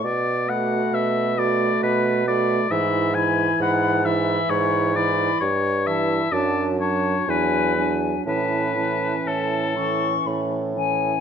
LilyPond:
<<
  \new Staff \with { instrumentName = "Flute" } { \time 3/4 \key a \major \tempo 4 = 66 r8 b''4 b''4 b''8 | b''8 b''4 b''4 b''8 | r8 a''8 a''8 a''8 gis''8 gis''8 | a''8 a''8 a''8 cis'''8 b''8 gis''8 | }
  \new Staff \with { instrumentName = "Oboe" } { \time 3/4 \key a \major d''8 fis''8 e''8 d''8 b'8 d''8 | e''8 gis''8 fis''8 e''8 cis''8 d''8 | cis''8 e''8 d''8 cis''8 b'8 r8 | b'4 a'4 r4 | }
  \new Staff \with { instrumentName = "Clarinet" } { \time 3/4 \key a \major r8 fis'4 fis'4 fis'8 | e'8 e'4 e'4 e'8 | r8 e'8 d'8 d'8 d'8 d'8 | cis'8 cis'4 cis'4 cis'8 | }
  \new Staff \with { instrumentName = "French horn" } { \clef bass \time 3/4 \key a \major r8 a4 a4 a8 | e8 e4 e4 e8 | r8 e8 fis8 fis8 fis8 fis8 | e8 e4 e4 e8 | }
  \new Staff \with { instrumentName = "Bassoon" } { \clef bass \time 3/4 \key a \major b,4 b,4 b,4 | gis,4 gis,4 gis,4 | g,4 fis,4 e,4 | a,4 a,4 a,4 | }
>>